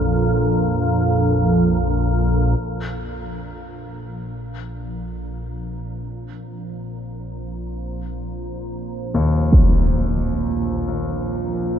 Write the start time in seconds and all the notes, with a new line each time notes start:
Already playing: A#1 F2
2.60 A#1 A#3
3.38 C5
3.91 F4
9.14 D#2
9.53 impact